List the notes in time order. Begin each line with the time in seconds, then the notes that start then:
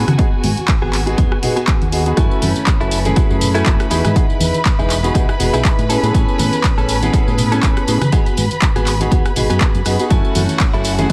Already playing: F#4 G#5
0.07 C#3, cross-stick, closed hi-hat, tambourine, high conga
0.18 B3 D#4 F#4 G#4, kick, closed hi-hat, tambourine
0.32 muted fingered electric bass stroke
0.44 G#2, open hi-hat, tambourine, high conga
0.57 closed hi-hat, tambourine, high conga
0.68 kick, clap, closed hi-hat
0.82 G#1 B3 F#4 G#4
0.93 clap, open hi-hat, tambourine
1.06 B3 D#4 F#4 G#4, closed hi-hat, tambourine
1.17 D#2 B3 D#4 F#4 G#4, kick, closed hi-hat
1.32 cross-stick
1.42 B3 D#4 F#4 G#4, open hi-hat, tambourine, low conga
1.56 B3 F#4 G#4, closed hi-hat, tambourine
1.68 kick, clap, closed hi-hat
1.82 D#2, closed hi-hat
1.92 B3 D#4 F#4 G#4, open hi-hat, tambourine
2.06 B3 D#4 F#4 G#4, closed hi-hat, tambourine
2.16 F#2 A3 C#4 E4 F#4 A4 B4 G#5 B5, kick, closed hi-hat, tambourine
2.31 tambourine
2.42 F#2, open hi-hat, tambourine, high conga
2.56 closed hi-hat, tambourine, high conga
2.67 kick, clap, closed hi-hat, tambourine
2.81 F#1 E4 F#4 A4, tambourine
2.91 open hi-hat, tambourine
3.05 A3 C#4 E4 G#4, closed hi-hat, tambourine, high conga
3.16 A3 C#4 E4 F#4 G#4 A4, kick, closed hi-hat, tambourine
3.29 F#2 A3 C#4 E4 G#4, tambourine
3.41 open hi-hat, tambourine, low conga
3.54 A3 C#4 E4 F#4 A4 G#5, closed hi-hat, tambourine
3.66 F#1, kick, clap, closed hi-hat, tambourine
3.80 cross-stick, closed hi-hat, tambourine
3.90 E2 B3 D#4 E4 F#4 G#4, open hi-hat, tambourine
4.05 G#2, cross-stick, closed hi-hat, tambourine, high conga
4.15 B3 D#4 F#4 G#4, kick, closed hi-hat, tambourine
4.30 muted fingered electric bass stroke, tambourine
4.40 E2, open hi-hat, tambourine, high conga
4.54 closed hi-hat, tambourine, high conga
4.65 kick, clap, closed hi-hat, tambourine
4.79 E1 D#4 E4 G#4, tambourine
4.89 clap, open hi-hat, tambourine
5.03 B3 D#4 F#4 G#4, closed hi-hat, tambourine
5.05 tambourine
5.14 B1 B3 D#4 E4 F#4 G#4, kick, closed hi-hat, tambourine
5.29 cross-stick, tambourine
5.39 E1 B3 D#4 F#4 G#4, open hi-hat, tambourine, low conga
5.53 B1 D#4 E4 G#4, closed hi-hat, tambourine
5.65 kick, clap, closed hi-hat, tambourine
5.78 A2, closed hi-hat, tambourine
5.89 B3 C#4 E4 G#4 A4, open hi-hat, tambourine
6.03 A2 B3 C#4 E4 G#4, closed hi-hat, tambourine
6.14 A2 B3 C#4 E4 G#5, kick, closed hi-hat, tambourine
6.29 tambourine
6.38 A2, open hi-hat, tambourine, high conga
6.52 closed hi-hat, tambourine, high conga
6.64 kick, clap, closed hi-hat, tambourine
6.77 A1 C#4 G#4 A4, tambourine
6.88 open hi-hat, tambourine
7.02 B3 C#4 E4 G#4, closed hi-hat, tambourine, high conga
7.13 C#4 G#4 A4, kick, closed hi-hat, tambourine
7.27 A2 B3 C#4 E4 G#4, tambourine
7.38 open hi-hat, tambourine, low conga
7.51 B3 C#4 E4 G#4 A4 G#5, closed hi-hat, tambourine
7.63 A1, kick, clap, closed hi-hat, tambourine
7.77 cross-stick, closed hi-hat, tambourine
7.87 A2 B3 C#4 E4 G#4, open hi-hat, tambourine
8.01 C#3, cross-stick, closed hi-hat, tambourine, high conga
8.12 B3 D#4 F#4 G#4, kick, closed hi-hat, tambourine
8.26 muted fingered electric bass stroke, closed hi-hat, tambourine
8.37 G#2, open hi-hat, tambourine, high conga
8.51 closed hi-hat, tambourine, high conga
8.62 kick, clap, closed hi-hat, tambourine
8.76 G#1 B3 F#4 G#4, closed hi-hat, tambourine
8.86 clap, open hi-hat, tambourine
9.00 B3 D#4 F#4 G#4, closed hi-hat, tambourine, high conga
9.11 D#2 B3 D#4 F#4 G#4, kick, closed hi-hat, tambourine
9.26 cross-stick, closed hi-hat, tambourine
9.36 G#1 B3 D#4 F#4 G#4, open hi-hat, tambourine, low conga
9.49 F#2 B3 F#4 G#4, closed hi-hat, tambourine
9.61 kick, clap, closed hi-hat, tambourine
9.75 F#2, closed hi-hat, tambourine
9.85 F#2 B3 D#4 F#4 G#4, cross-stick, open hi-hat, tambourine
9.99 B3 D#4 F#4 G#4, closed hi-hat, tambourine
10.10 F#2 A3 C#4 E4 F#4 A4 F#5 G#5, kick, closed hi-hat, tambourine
10.25 tambourine
10.35 F#2, open hi-hat, tambourine, high conga
10.49 closed hi-hat, tambourine, high conga
10.60 kick, clap, closed hi-hat, tambourine
10.74 F#1 E4 F#4 A4, tambourine
10.84 open hi-hat, tambourine
10.98 A3 C#4 E4 G#4, closed hi-hat, tambourine, high conga